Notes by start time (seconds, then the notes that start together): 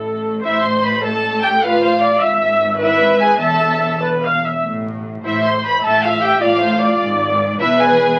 Already playing: A1 A2 A4
0.43 E4 C5 E5
0.63 C5 C6
0.84 B4 B5
1.04 A4 A5
1.42 G4 G5
1.63 F4 B4 F5
1.83 C5
2.02 D5
2.21 G#1 G#2 E5
2.80 E4 B4 E5
3.20 G#4 G#5
3.40 E1 E2 A4 E5 A5
4.02 B4
4.24 F5
4.44 E5
4.63 A1 A2
5.24 A1 A2 E4 C5 E5
5.44 C5 C6
5.63 B4 B5
5.83 A1 A2 A4 E5 A5
6.02 F4 F5
6.22 G4 G5
6.42 A1 A2 F4 D5 F5
6.60 C5
6.81 D5
6.99 G#1 G#2
7.59 E1 E2 E4 B4 E5
7.80 G#4 G#5